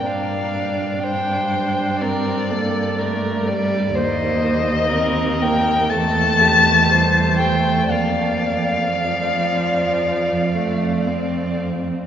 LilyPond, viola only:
\new Staff \with { instrumentName = "Viola" } { \time 4/4 \key g \minor \tempo 4 = 61 d'4 d'4 c'8 bes8 a8 g8 | bes4 c'8 bes8 a4 g8 a8 | bes4 f4. a8 c'4 | }